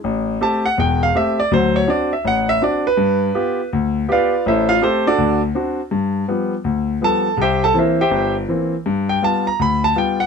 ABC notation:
X:1
M:4/4
L:1/8
Q:"Swing" 1/4=164
K:Gmix
V:1 name="Grand piano"
z2 a ^f g =f e d | c ^c d e ^f e d B- | B4 z2 [FBdf]2 | [EAce] [Ff] [Ac] [D^FAd]2 z3 |
z6 [Aa]2 | [Gceg] [Aa] [E_Bce] [Gceg]2 z3 | z g a _b =b a g ^f |]
V:2 name="Grand piano"
A,,,2 [A,CG] z [E,,,E,,]2 [A,CG] z | [D,,^F,]2 [CD^F] z A,,,2 [CDF] z | G,,2 [B,FG] z D,,2 [B,FG] z | A,,,2 [A,CG] z D,,2 [CD^F] z |
G,,2 [F,G,B,] z D,,2 [F,G,B,] z | C,,2 [E,_B,C] z G,,,2 [E,B,C] z | G,,2 [G,B,F] z D,,2 [G,B,F] z |]